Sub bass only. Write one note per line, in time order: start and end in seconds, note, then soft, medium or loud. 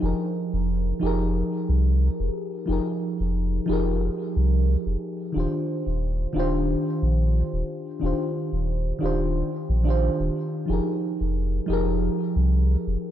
0.03 0.14 F1 loud
0.53 0.93 F1 loud
1.03 1.43 F1 medium
1.69 2.09 C2 loud
2.20 2.30 F1 medium
2.69 2.80 F1 loud
3.20 3.60 F1 loud
3.69 4.09 F1 medium
4.36 4.76 C2 loud
4.86 4.96 F1 medium
5.36 5.47 D#1 loud
5.87 6.26 D#1 loud
6.35 6.76 D#1 medium
7.02 7.43 A#1 loud
7.53 7.63 D#1 medium
8.03 8.13 D#1 loud
8.53 8.93 D#1 loud
9.03 9.43 D#1 medium
9.69 10.09 A#1 loud
10.20 10.30 D#1 medium
10.69 10.80 F1 loud
11.21 11.60 F1 loud
11.69 12.09 F1 medium
12.36 12.76 C2 loud
12.87 12.97 F1 medium